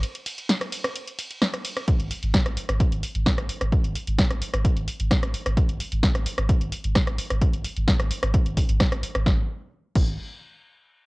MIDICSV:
0, 0, Header, 1, 3, 480
1, 0, Start_track
1, 0, Tempo, 461538
1, 33, Time_signature, 4, 2, 24, 8
1, 11503, End_track
2, 0, Start_track
2, 0, Title_t, "Sub bass"
2, 0, Program_c, 0, 38
2, 2076, Note_on_c, 0, 32, 75
2, 2190, Note_off_c, 0, 32, 0
2, 2316, Note_on_c, 0, 32, 85
2, 2430, Note_off_c, 0, 32, 0
2, 2555, Note_on_c, 0, 32, 80
2, 2670, Note_off_c, 0, 32, 0
2, 2795, Note_on_c, 0, 32, 84
2, 2910, Note_off_c, 0, 32, 0
2, 3035, Note_on_c, 0, 32, 76
2, 3150, Note_off_c, 0, 32, 0
2, 3274, Note_on_c, 0, 32, 85
2, 3389, Note_off_c, 0, 32, 0
2, 3515, Note_on_c, 0, 32, 78
2, 3630, Note_off_c, 0, 32, 0
2, 3755, Note_on_c, 0, 32, 76
2, 3870, Note_off_c, 0, 32, 0
2, 3995, Note_on_c, 0, 32, 80
2, 4110, Note_off_c, 0, 32, 0
2, 4235, Note_on_c, 0, 32, 84
2, 4350, Note_off_c, 0, 32, 0
2, 4475, Note_on_c, 0, 32, 77
2, 4590, Note_off_c, 0, 32, 0
2, 4715, Note_on_c, 0, 32, 83
2, 4830, Note_off_c, 0, 32, 0
2, 4955, Note_on_c, 0, 32, 78
2, 5070, Note_off_c, 0, 32, 0
2, 5196, Note_on_c, 0, 32, 82
2, 5310, Note_off_c, 0, 32, 0
2, 5436, Note_on_c, 0, 32, 78
2, 5550, Note_off_c, 0, 32, 0
2, 5676, Note_on_c, 0, 32, 82
2, 5790, Note_off_c, 0, 32, 0
2, 5916, Note_on_c, 0, 32, 78
2, 6030, Note_off_c, 0, 32, 0
2, 6156, Note_on_c, 0, 32, 82
2, 6270, Note_off_c, 0, 32, 0
2, 6396, Note_on_c, 0, 32, 76
2, 6510, Note_off_c, 0, 32, 0
2, 6637, Note_on_c, 0, 32, 84
2, 6751, Note_off_c, 0, 32, 0
2, 6876, Note_on_c, 0, 32, 74
2, 6990, Note_off_c, 0, 32, 0
2, 7116, Note_on_c, 0, 32, 82
2, 7230, Note_off_c, 0, 32, 0
2, 7357, Note_on_c, 0, 32, 79
2, 7471, Note_off_c, 0, 32, 0
2, 7598, Note_on_c, 0, 32, 82
2, 7711, Note_off_c, 0, 32, 0
2, 7838, Note_on_c, 0, 32, 77
2, 7951, Note_off_c, 0, 32, 0
2, 8078, Note_on_c, 0, 32, 81
2, 8191, Note_off_c, 0, 32, 0
2, 8318, Note_on_c, 0, 32, 75
2, 8431, Note_off_c, 0, 32, 0
2, 8557, Note_on_c, 0, 32, 83
2, 8671, Note_off_c, 0, 32, 0
2, 8796, Note_on_c, 0, 32, 81
2, 8910, Note_off_c, 0, 32, 0
2, 9036, Note_on_c, 0, 32, 83
2, 9150, Note_off_c, 0, 32, 0
2, 9276, Note_on_c, 0, 32, 79
2, 9390, Note_off_c, 0, 32, 0
2, 9517, Note_on_c, 0, 32, 77
2, 9628, Note_off_c, 0, 32, 0
2, 9634, Note_on_c, 0, 32, 102
2, 9770, Note_off_c, 0, 32, 0
2, 10354, Note_on_c, 0, 32, 98
2, 10577, Note_off_c, 0, 32, 0
2, 11503, End_track
3, 0, Start_track
3, 0, Title_t, "Drums"
3, 33, Note_on_c, 9, 42, 79
3, 33, Note_on_c, 9, 51, 57
3, 137, Note_off_c, 9, 42, 0
3, 137, Note_off_c, 9, 51, 0
3, 156, Note_on_c, 9, 42, 57
3, 260, Note_off_c, 9, 42, 0
3, 272, Note_on_c, 9, 46, 103
3, 272, Note_on_c, 9, 51, 84
3, 376, Note_off_c, 9, 46, 0
3, 376, Note_off_c, 9, 51, 0
3, 396, Note_on_c, 9, 42, 52
3, 500, Note_off_c, 9, 42, 0
3, 512, Note_on_c, 9, 38, 127
3, 512, Note_on_c, 9, 42, 87
3, 512, Note_on_c, 9, 51, 63
3, 616, Note_off_c, 9, 38, 0
3, 616, Note_off_c, 9, 42, 0
3, 616, Note_off_c, 9, 51, 0
3, 635, Note_on_c, 9, 37, 82
3, 635, Note_on_c, 9, 42, 55
3, 739, Note_off_c, 9, 37, 0
3, 739, Note_off_c, 9, 42, 0
3, 751, Note_on_c, 9, 46, 99
3, 751, Note_on_c, 9, 51, 83
3, 855, Note_off_c, 9, 46, 0
3, 855, Note_off_c, 9, 51, 0
3, 875, Note_on_c, 9, 37, 97
3, 875, Note_on_c, 9, 42, 53
3, 979, Note_off_c, 9, 37, 0
3, 979, Note_off_c, 9, 42, 0
3, 992, Note_on_c, 9, 42, 79
3, 992, Note_on_c, 9, 51, 58
3, 1096, Note_off_c, 9, 42, 0
3, 1096, Note_off_c, 9, 51, 0
3, 1116, Note_on_c, 9, 42, 57
3, 1220, Note_off_c, 9, 42, 0
3, 1232, Note_on_c, 9, 46, 99
3, 1232, Note_on_c, 9, 51, 79
3, 1336, Note_off_c, 9, 46, 0
3, 1336, Note_off_c, 9, 51, 0
3, 1356, Note_on_c, 9, 42, 54
3, 1460, Note_off_c, 9, 42, 0
3, 1472, Note_on_c, 9, 37, 94
3, 1472, Note_on_c, 9, 38, 127
3, 1472, Note_on_c, 9, 42, 83
3, 1472, Note_on_c, 9, 51, 58
3, 1576, Note_off_c, 9, 37, 0
3, 1576, Note_off_c, 9, 38, 0
3, 1576, Note_off_c, 9, 42, 0
3, 1576, Note_off_c, 9, 51, 0
3, 1596, Note_on_c, 9, 37, 81
3, 1596, Note_on_c, 9, 42, 54
3, 1700, Note_off_c, 9, 37, 0
3, 1700, Note_off_c, 9, 42, 0
3, 1712, Note_on_c, 9, 46, 104
3, 1712, Note_on_c, 9, 51, 84
3, 1816, Note_off_c, 9, 46, 0
3, 1816, Note_off_c, 9, 51, 0
3, 1836, Note_on_c, 9, 37, 81
3, 1836, Note_on_c, 9, 42, 54
3, 1940, Note_off_c, 9, 37, 0
3, 1940, Note_off_c, 9, 42, 0
3, 1952, Note_on_c, 9, 42, 81
3, 1953, Note_on_c, 9, 36, 121
3, 2056, Note_off_c, 9, 42, 0
3, 2057, Note_off_c, 9, 36, 0
3, 2076, Note_on_c, 9, 42, 55
3, 2180, Note_off_c, 9, 42, 0
3, 2192, Note_on_c, 9, 46, 104
3, 2296, Note_off_c, 9, 46, 0
3, 2316, Note_on_c, 9, 42, 55
3, 2420, Note_off_c, 9, 42, 0
3, 2432, Note_on_c, 9, 38, 126
3, 2432, Note_on_c, 9, 42, 84
3, 2433, Note_on_c, 9, 36, 122
3, 2536, Note_off_c, 9, 38, 0
3, 2536, Note_off_c, 9, 42, 0
3, 2537, Note_off_c, 9, 36, 0
3, 2556, Note_on_c, 9, 37, 75
3, 2556, Note_on_c, 9, 42, 55
3, 2660, Note_off_c, 9, 37, 0
3, 2660, Note_off_c, 9, 42, 0
3, 2672, Note_on_c, 9, 46, 105
3, 2776, Note_off_c, 9, 46, 0
3, 2796, Note_on_c, 9, 37, 86
3, 2796, Note_on_c, 9, 42, 58
3, 2900, Note_off_c, 9, 37, 0
3, 2900, Note_off_c, 9, 42, 0
3, 2913, Note_on_c, 9, 36, 115
3, 2913, Note_on_c, 9, 42, 79
3, 3017, Note_off_c, 9, 36, 0
3, 3017, Note_off_c, 9, 42, 0
3, 3037, Note_on_c, 9, 42, 58
3, 3141, Note_off_c, 9, 42, 0
3, 3152, Note_on_c, 9, 46, 104
3, 3256, Note_off_c, 9, 46, 0
3, 3276, Note_on_c, 9, 42, 53
3, 3380, Note_off_c, 9, 42, 0
3, 3393, Note_on_c, 9, 36, 120
3, 3393, Note_on_c, 9, 37, 85
3, 3393, Note_on_c, 9, 38, 126
3, 3393, Note_on_c, 9, 42, 82
3, 3497, Note_off_c, 9, 36, 0
3, 3497, Note_off_c, 9, 37, 0
3, 3497, Note_off_c, 9, 38, 0
3, 3497, Note_off_c, 9, 42, 0
3, 3516, Note_on_c, 9, 37, 83
3, 3516, Note_on_c, 9, 42, 55
3, 3620, Note_off_c, 9, 37, 0
3, 3620, Note_off_c, 9, 42, 0
3, 3632, Note_on_c, 9, 46, 105
3, 3736, Note_off_c, 9, 46, 0
3, 3756, Note_on_c, 9, 37, 79
3, 3756, Note_on_c, 9, 42, 53
3, 3860, Note_off_c, 9, 37, 0
3, 3860, Note_off_c, 9, 42, 0
3, 3872, Note_on_c, 9, 42, 78
3, 3873, Note_on_c, 9, 36, 123
3, 3976, Note_off_c, 9, 42, 0
3, 3977, Note_off_c, 9, 36, 0
3, 3996, Note_on_c, 9, 42, 55
3, 4100, Note_off_c, 9, 42, 0
3, 4113, Note_on_c, 9, 46, 103
3, 4217, Note_off_c, 9, 46, 0
3, 4236, Note_on_c, 9, 42, 56
3, 4340, Note_off_c, 9, 42, 0
3, 4352, Note_on_c, 9, 38, 127
3, 4352, Note_on_c, 9, 42, 85
3, 4353, Note_on_c, 9, 36, 127
3, 4456, Note_off_c, 9, 38, 0
3, 4456, Note_off_c, 9, 42, 0
3, 4457, Note_off_c, 9, 36, 0
3, 4477, Note_on_c, 9, 37, 75
3, 4477, Note_on_c, 9, 42, 54
3, 4581, Note_off_c, 9, 37, 0
3, 4581, Note_off_c, 9, 42, 0
3, 4593, Note_on_c, 9, 46, 108
3, 4697, Note_off_c, 9, 46, 0
3, 4717, Note_on_c, 9, 37, 90
3, 4717, Note_on_c, 9, 42, 55
3, 4821, Note_off_c, 9, 37, 0
3, 4821, Note_off_c, 9, 42, 0
3, 4833, Note_on_c, 9, 36, 113
3, 4833, Note_on_c, 9, 42, 82
3, 4937, Note_off_c, 9, 36, 0
3, 4937, Note_off_c, 9, 42, 0
3, 4957, Note_on_c, 9, 42, 55
3, 5061, Note_off_c, 9, 42, 0
3, 5072, Note_on_c, 9, 46, 107
3, 5176, Note_off_c, 9, 46, 0
3, 5197, Note_on_c, 9, 42, 58
3, 5301, Note_off_c, 9, 42, 0
3, 5312, Note_on_c, 9, 37, 86
3, 5312, Note_on_c, 9, 38, 120
3, 5312, Note_on_c, 9, 42, 84
3, 5313, Note_on_c, 9, 36, 126
3, 5416, Note_off_c, 9, 37, 0
3, 5416, Note_off_c, 9, 38, 0
3, 5416, Note_off_c, 9, 42, 0
3, 5417, Note_off_c, 9, 36, 0
3, 5437, Note_on_c, 9, 37, 81
3, 5437, Note_on_c, 9, 42, 57
3, 5541, Note_off_c, 9, 37, 0
3, 5541, Note_off_c, 9, 42, 0
3, 5553, Note_on_c, 9, 46, 106
3, 5657, Note_off_c, 9, 46, 0
3, 5677, Note_on_c, 9, 37, 77
3, 5677, Note_on_c, 9, 42, 54
3, 5781, Note_off_c, 9, 37, 0
3, 5781, Note_off_c, 9, 42, 0
3, 5792, Note_on_c, 9, 36, 121
3, 5793, Note_on_c, 9, 42, 78
3, 5896, Note_off_c, 9, 36, 0
3, 5897, Note_off_c, 9, 42, 0
3, 5916, Note_on_c, 9, 42, 57
3, 6020, Note_off_c, 9, 42, 0
3, 6033, Note_on_c, 9, 46, 103
3, 6137, Note_off_c, 9, 46, 0
3, 6156, Note_on_c, 9, 42, 56
3, 6260, Note_off_c, 9, 42, 0
3, 6273, Note_on_c, 9, 36, 127
3, 6273, Note_on_c, 9, 38, 121
3, 6273, Note_on_c, 9, 42, 82
3, 6377, Note_off_c, 9, 36, 0
3, 6377, Note_off_c, 9, 38, 0
3, 6377, Note_off_c, 9, 42, 0
3, 6397, Note_on_c, 9, 37, 81
3, 6397, Note_on_c, 9, 42, 54
3, 6501, Note_off_c, 9, 37, 0
3, 6501, Note_off_c, 9, 42, 0
3, 6513, Note_on_c, 9, 46, 111
3, 6617, Note_off_c, 9, 46, 0
3, 6637, Note_on_c, 9, 37, 92
3, 6637, Note_on_c, 9, 42, 56
3, 6741, Note_off_c, 9, 37, 0
3, 6741, Note_off_c, 9, 42, 0
3, 6753, Note_on_c, 9, 36, 121
3, 6753, Note_on_c, 9, 42, 80
3, 6857, Note_off_c, 9, 36, 0
3, 6857, Note_off_c, 9, 42, 0
3, 6877, Note_on_c, 9, 42, 57
3, 6981, Note_off_c, 9, 42, 0
3, 6993, Note_on_c, 9, 46, 111
3, 7097, Note_off_c, 9, 46, 0
3, 7117, Note_on_c, 9, 42, 54
3, 7221, Note_off_c, 9, 42, 0
3, 7232, Note_on_c, 9, 37, 93
3, 7232, Note_on_c, 9, 38, 123
3, 7232, Note_on_c, 9, 42, 81
3, 7233, Note_on_c, 9, 36, 126
3, 7336, Note_off_c, 9, 37, 0
3, 7336, Note_off_c, 9, 38, 0
3, 7336, Note_off_c, 9, 42, 0
3, 7337, Note_off_c, 9, 36, 0
3, 7356, Note_on_c, 9, 37, 85
3, 7356, Note_on_c, 9, 42, 56
3, 7460, Note_off_c, 9, 37, 0
3, 7460, Note_off_c, 9, 42, 0
3, 7473, Note_on_c, 9, 46, 113
3, 7577, Note_off_c, 9, 46, 0
3, 7597, Note_on_c, 9, 37, 77
3, 7597, Note_on_c, 9, 42, 53
3, 7701, Note_off_c, 9, 37, 0
3, 7701, Note_off_c, 9, 42, 0
3, 7713, Note_on_c, 9, 36, 116
3, 7713, Note_on_c, 9, 42, 74
3, 7817, Note_off_c, 9, 36, 0
3, 7817, Note_off_c, 9, 42, 0
3, 7837, Note_on_c, 9, 42, 53
3, 7941, Note_off_c, 9, 42, 0
3, 7952, Note_on_c, 9, 46, 109
3, 8056, Note_off_c, 9, 46, 0
3, 8077, Note_on_c, 9, 42, 50
3, 8181, Note_off_c, 9, 42, 0
3, 8193, Note_on_c, 9, 38, 118
3, 8193, Note_on_c, 9, 42, 82
3, 8194, Note_on_c, 9, 36, 120
3, 8297, Note_off_c, 9, 38, 0
3, 8297, Note_off_c, 9, 42, 0
3, 8298, Note_off_c, 9, 36, 0
3, 8317, Note_on_c, 9, 37, 87
3, 8317, Note_on_c, 9, 42, 51
3, 8421, Note_off_c, 9, 37, 0
3, 8421, Note_off_c, 9, 42, 0
3, 8433, Note_on_c, 9, 46, 110
3, 8537, Note_off_c, 9, 46, 0
3, 8557, Note_on_c, 9, 37, 98
3, 8557, Note_on_c, 9, 42, 53
3, 8661, Note_off_c, 9, 37, 0
3, 8661, Note_off_c, 9, 42, 0
3, 8674, Note_on_c, 9, 36, 118
3, 8674, Note_on_c, 9, 42, 78
3, 8778, Note_off_c, 9, 36, 0
3, 8778, Note_off_c, 9, 42, 0
3, 8798, Note_on_c, 9, 42, 53
3, 8902, Note_off_c, 9, 42, 0
3, 8914, Note_on_c, 9, 36, 68
3, 8914, Note_on_c, 9, 46, 106
3, 9018, Note_off_c, 9, 36, 0
3, 9018, Note_off_c, 9, 46, 0
3, 9038, Note_on_c, 9, 42, 55
3, 9142, Note_off_c, 9, 42, 0
3, 9153, Note_on_c, 9, 37, 96
3, 9153, Note_on_c, 9, 38, 113
3, 9153, Note_on_c, 9, 42, 82
3, 9154, Note_on_c, 9, 36, 123
3, 9257, Note_off_c, 9, 37, 0
3, 9257, Note_off_c, 9, 38, 0
3, 9257, Note_off_c, 9, 42, 0
3, 9258, Note_off_c, 9, 36, 0
3, 9278, Note_on_c, 9, 37, 85
3, 9278, Note_on_c, 9, 42, 53
3, 9382, Note_off_c, 9, 37, 0
3, 9382, Note_off_c, 9, 42, 0
3, 9394, Note_on_c, 9, 46, 104
3, 9498, Note_off_c, 9, 46, 0
3, 9517, Note_on_c, 9, 37, 86
3, 9517, Note_on_c, 9, 42, 49
3, 9621, Note_off_c, 9, 37, 0
3, 9621, Note_off_c, 9, 42, 0
3, 9633, Note_on_c, 9, 38, 82
3, 9634, Note_on_c, 9, 36, 110
3, 9737, Note_off_c, 9, 38, 0
3, 9738, Note_off_c, 9, 36, 0
3, 10353, Note_on_c, 9, 49, 83
3, 10354, Note_on_c, 9, 36, 114
3, 10457, Note_off_c, 9, 49, 0
3, 10458, Note_off_c, 9, 36, 0
3, 11503, End_track
0, 0, End_of_file